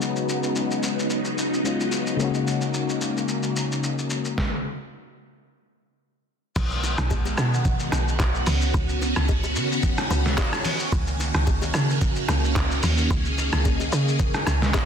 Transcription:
Already playing: string machine C#3 F#3 B3 D#4, fm electric piano G#3 B3 C#4 D#4 F#4
0.01 shaker
0.16 shaker
0.29 shaker
0.43 shaker
0.56 shaker
0.71 shaker
0.83 shaker
0.99 shaker
1.10 shaker
1.25 shaker
1.38 shaker
1.54 shaker
1.64 fm electric piano G#3 B3 C#4 D#4 F4, shaker
1.80 shaker
1.92 shaker
2.07 shaker
2.16 fm electric piano C#3 G#3 A#3, string machine A#3, shaker
2.21 fm electric piano C#4 D#4 F#4
2.34 shaker
2.47 shaker
2.61 shaker
2.74 shaker
2.89 shaker
3.01 shaker
3.17 shaker
3.28 shaker
3.43 shaker
3.56 shaker
3.72 shaker
3.83 shaker
3.98 shaker
4.10 shaker
4.25 shaker
4.38 kick, snare
6.56 log drum bass B1, string machine D#3 G#3 B3 F#4, kick, crash, low conga, shaker
6.71 shaker
6.83 low bongo, shaker
6.98 log drum bass B1, cross-stick, shaker
7.10 kick, high bongo, shaker
7.25 high bongo, shaker
7.38 log drum bass B2, cross-stick, shaker
7.54 shaker
7.65 kick, low conga, shaker
7.79 shaker
7.92 log drum bass B1, cross-stick, high bongo, low bongo, shaker
8.08 shaker
8.20 log drum bass B1, kick, clap, high bongo, low bongo, shaker
8.35 shaker
8.46 log drum bass C#2, string machine D#3 B3 C#4, open hi-hat, low conga, shaker
8.61 shaker
8.74 log drum bass C#2, kick, low conga, shaker
8.89 shaker
9.02 low bongo, shaker
9.16 log drum bass C#2, cross-stick, shaker
9.28 kick, high bongo, shaker
9.44 high bongo, shaker
9.56 log drum bass C#3, shaker
9.72 shaker
9.83 kick, low conga, shaker
9.97 cross-stick, shaker
10.11 log drum bass C#2, high bongo, low bongo, shaker
10.26 snare, shaker
10.38 kick, clap, high bongo, low bongo, shaker
10.53 cross-stick, shaker
10.65 open hi-hat, low conga, shaker
10.79 shaker
10.92 log drum bass C#2, string machine A#3, kick, low conga, shaker
11.07 shaker
11.20 low bongo, shaker
11.34 log drum bass C#2, cross-stick, shaker
11.47 kick, high bongo, shaker
11.62 high bongo, shaker
11.74 log drum bass C#3, cross-stick, shaker
11.90 shaker
12.01 kick, low conga, shaker
12.16 shaker
12.28 log drum bass C#2, cross-stick, high bongo, low bongo, shaker
12.44 shaker
12.56 log drum bass C#2, kick, clap, high bongo, low bongo, shaker
12.71 shaker
12.83 log drum bass D#2, open hi-hat, low conga, shaker
12.97 shaker
13.10 log drum bass C#2, string machine G#4, kick, low conga, shaker
13.25 shaker
13.38 low bongo, shaker
13.52 log drum bass C#2, cross-stick, shaker
13.65 kick, high bongo, shaker
13.80 high bongo, shaker
13.92 log drum bass C#3, shaker
14.08 shaker
14.19 kick, low conga, shaker
14.34 cross-stick, shaker
14.47 log drum bass C#2, cross-stick, high bongo, low bongo, shaker
14.62 snare, shaker
14.74 kick, clap, high bongo, low bongo, shaker

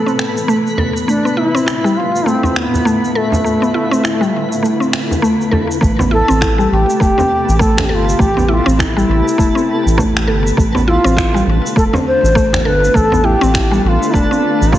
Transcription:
Already playing: ambient pad A2 C3 E3 B3, synth texture B3 B4, bansuri A4
0.06 synth pluck C4, shaker
0.19 finger snap
0.37 shaker
0.48 synth pluck A3, shaker
0.67 shaker
0.77 synth pluck A4, frame drum
0.97 shaker
1.08 ambient pad D3 A3 E4 F4, synth pluck A3, bansuri D4, shaker
1.25 synth pluck B3, shaker
1.37 synth pluck E4, bansuri E4
1.55 synth pluck C4, shaker
1.67 synth pluck E4, finger snap, shaker
1.84 synth pluck G3, shaker
1.97 bansuri F4
2.16 shaker
2.26 synth pluck A3, bansuri C4, shaker
2.43 synth pluck C4, frame drum, shaker
2.56 bansuri B3, finger snap
2.74 frame drum, shaker
2.85 synth pluck A3, shaker
3.04 shaker
3.15 bansuri A3, synth pluck A4
3.32 frame drum, shaker
3.44 synth pluck A3, shaker
3.62 synth pluck B3, shaker
3.74 synth pluck E4
3.91 synth pluck C4, shaker
4.04 synth pluck E4, finger snap, shaker
4.21 synth pluck G3, shaker
4.52 shaker
4.63 synth pluck A3, shaker
4.80 synth pluck C4, shaker
4.93 finger snap
5.11 frame drum, shaker
5.22 synth pluck A3, shaker
5.41 shaker
5.51 synth pluck A4, frame drum
5.71 shaker
5.81 analog synth bass A1, ambient pad C3 A3 G4, synth pluck A3, synth texture B3 A4, kick, shaker
5.99 synth pluck B3, frame drum, shaker
6.11 synth pluck E4, bansuri A4
6.28 analog synth bass A1, synth pluck C4, shaker
6.41 synth pluck E4, finger snap, kick, shaker
6.58 synth pluck G3, shaker
6.71 analog synth bass A1, bansuri G4
6.90 shaker
7.00 analog synth bass E1, synth pluck A3, bansuri G4, kick, shaker
7.18 synth pluck C4, frame drum, shaker
7.48 analog synth bass A1, shaker
7.59 synth pluck A3, bansuri A4, kick, shaker
7.77 finger snap, frame drum, shaker
7.84 bansuri G4
7.89 analog synth bass G1, bansuri G4, synth pluck A4
7.95 bansuri F4
8.09 shaker
8.19 analog synth bass A1, synth pluck A3, bansuri G4, kick, shaker
8.37 synth pluck B3, frame drum, shaker
8.48 synth pluck E4, bansuri G4
8.54 bansuri F4
8.66 analog synth bass A1, synth pluck C4, shaker
8.78 bansuri E4, synth pluck E4, finger snap, kick, shaker
8.97 synth pluck G3, shaker
9.08 analog synth bass A1
9.28 shaker
9.38 analog synth bass E1, synth pluck A3, kick, shaker
9.55 synth pluck C4, shaker
9.86 analog synth bass A1, shaker
9.98 synth pluck A3, kick, frame drum, shaker
10.17 finger snap, shaker
10.28 analog synth bass G1, synth pluck A4
10.47 shaker
10.57 analog synth bass A1, ambient pad D3 A3 D4 F4, synth pluck A3, kick, shaker
10.75 synth pluck B3, frame drum, shaker
10.87 synth pluck E4, bansuri F4
11.04 analog synth bass A1, synth pluck C4, shaker
11.17 synth pluck E4, finger snap, kick, shaker
11.34 synth pluck G3, shaker
11.46 analog synth bass A1
11.66 shaker
11.76 analog synth bass E1, synth pluck A3, bansuri A4, kick, shaker
11.93 synth pluck C4, frame drum, shaker
12.07 bansuri C5
12.23 analog synth bass A1, shaker
12.35 synth pluck A3, kick, shaker
12.53 finger snap, frame drum, shaker
12.65 analog synth bass G1, synth pluck A4, bansuri B4
12.84 shaker
12.94 analog synth bass A1, synth pluck A3, bansuri A4, kick, shaker
13.12 synth pluck B3, frame drum, shaker
13.24 synth pluck E4, bansuri G4
13.41 analog synth bass A1, synth pluck C4, shaker
13.54 synth pluck E4, finger snap, kick, shaker
13.71 synth pluck G3, shaker
13.84 analog synth bass A1, bansuri G4
13.88 bansuri F4
14.03 shaker
14.14 analog synth bass E1, synth pluck A3, bansuri D4, kick, shaker
14.31 synth pluck C4, shaker
14.61 analog synth bass A1, shaker
14.72 synth pluck A3, bansuri F4, kick, frame drum, shaker

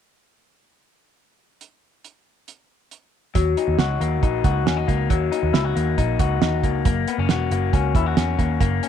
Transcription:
1.61 closed hi-hat
2.04 closed hi-hat
2.48 closed hi-hat
2.91 closed hi-hat
3.35 picked electric bass D#2, clean electric guitar F#3, kick, closed hi-hat
3.57 clean electric guitar D#4, closed hi-hat
3.68 picked electric bass D#2
3.78 picked electric bass C#2, clean electric guitar F#4, snare, closed hi-hat
4.01 picked electric bass D#2, clean electric guitar A#3, closed hi-hat
4.23 picked electric bass A#1, clean electric guitar D#4, kick, closed hi-hat
4.44 picked electric bass C#2, clean electric guitar F#4, kick, closed hi-hat
4.66 picked electric bass D#2, clean electric guitar C#4, snare, closed hi-hat
4.77 clean electric guitar D#4
4.88 picked electric bass C#2, clean electric guitar A#3, kick, closed hi-hat
5.10 picked electric bass D#2, clean electric guitar F#3, kick, closed hi-hat
5.32 clean electric guitar D#4, closed hi-hat
5.43 picked electric bass D#2
5.53 picked electric bass C#2, clean electric guitar E4, snare, closed hi-hat
5.65 clean electric guitar F#4
5.76 picked electric bass D#2, clean electric guitar A#3, closed hi-hat
5.98 picked electric bass A#1, clean electric guitar D#4, kick, closed hi-hat
6.19 picked electric bass C#2, clean electric guitar F#4, kick, closed hi-hat
6.42 picked electric bass D#2, clean electric guitar D#4, snare, closed hi-hat
6.63 picked electric bass C#2, clean electric guitar A#3, kick, closed hi-hat
6.85 picked electric bass F#1, clean electric guitar A#3, kick, closed hi-hat
7.08 clean electric guitar B3, closed hi-hat
7.18 picked electric bass F#1, clean electric guitar C#4
7.29 picked electric bass E1, clean electric guitar F#4, snare, closed hi-hat
7.51 picked electric bass F#1, clean electric guitar A#3, closed hi-hat
7.73 picked electric bass C#2, clean electric guitar C#4, kick, closed hi-hat
7.95 picked electric bass D#2, clean electric guitar E4, kick, closed hi-hat
8.06 clean electric guitar F#4
8.17 picked electric bass E2, clean electric guitar C#4, snare, closed hi-hat
8.39 picked electric bass D#2, clean electric guitar A#3, kick, closed hi-hat
8.61 picked electric bass F#1, clean electric guitar A#3, kick, closed hi-hat
8.83 clean electric guitar C#4, closed hi-hat

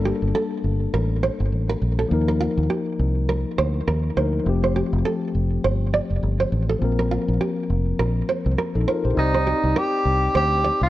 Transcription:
Already playing: fingered electric bass G1, tine electric piano G3 A#3 D4 A4
0.05 nylon-string guitar G4
0.22 fingered electric bass G1
0.35 nylon-string guitar A4
0.64 fingered electric bass G1
0.94 fingered electric bass A1, nylon-string guitar A#4
1.23 nylon-string guitar C5
1.40 fingered electric bass G1
1.52 fingered electric bass A1
1.70 nylon-string guitar A#4
1.82 fingered electric bass A#1
1.99 nylon-string guitar A4
2.09 fingered electric bass D#2, tine electric piano F3 A#3 D#4
2.14 tine electric piano A#4
2.28 nylon-string guitar A#4
2.41 nylon-string guitar F4
2.58 fingered electric bass D#2
2.70 nylon-string guitar G4
2.99 fingered electric bass C2
3.29 nylon-string guitar A#4
3.58 fingered electric bass D2, nylon-string guitar C5
3.88 fingered electric bass D#2, nylon-string guitar A#4
4.16 fingered electric bass D2, tine electric piano F3 A#3 D#4 A#4, nylon-string guitar C5
4.44 fingered electric bass F1, tine electric piano F3 A3 C4
4.49 tine electric piano G4
4.64 nylon-string guitar C5
4.76 nylon-string guitar G4
4.93 fingered electric bass F1
5.05 nylon-string guitar A4
5.35 fingered electric bass F1
5.64 fingered electric bass G1, nylon-string guitar C5
5.94 nylon-string guitar D5
6.10 fingered electric bass F1
6.23 fingered electric bass G1
6.40 nylon-string guitar C5
6.52 fingered electric bass A1
6.69 nylon-string guitar A4
6.79 fingered electric bass A#1, tine electric piano F3 A#3 C4
6.84 tine electric piano A#4
6.99 nylon-string guitar A#4
7.11 nylon-string guitar F4
7.28 fingered electric bass A#1
7.41 nylon-string guitar G4
7.70 fingered electric bass F1
7.99 fingered electric bass A#1, nylon-string guitar A#4
8.29 nylon-string guitar C5
8.46 fingered electric bass C2
8.58 nylon-string guitar A#4
8.75 fingered electric bass A#1, tine electric piano D#4 A4
8.88 tine electric piano F4 A#4, nylon-string guitar C5
9.05 fingered electric bass A#1, tine electric piano G4 C5
9.15 fingered electric bass C2, tine electric piano C4 D#4 D5, tenor saxophone D#4
9.20 tine electric piano G4
9.34 nylon-string guitar C5
9.47 nylon-string guitar G4
9.63 fingered electric bass C2
9.76 tenor saxophone G4, nylon-string guitar A#4
10.05 fingered electric bass C2
10.35 fingered electric bass D2, tenor saxophone G4, nylon-string guitar C5
10.64 nylon-string guitar D5
10.81 fingered electric bass C2, tenor saxophone F4

